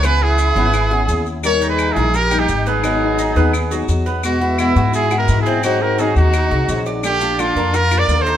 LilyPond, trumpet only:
\new Staff \with { instrumentName = "Trumpet" } { \time 4/4 \key gis \minor \tempo 4 = 171 b'8 gis'2. r8 | \tuplet 3/2 { cis''4 b'8~ b'8 gis'4 ais'4 g'8~ } g'8 gis'8~ | gis'2. r4 | fis'4 e'4 \tuplet 3/2 { gis'4 ais'8~ ais'8 gis'4 } |
fis'8 ais'8 gis'8 fis'2 r8 | g'4 eis'4 \tuplet 3/2 { ais'4 d''8~ d''8 bis'4 } | }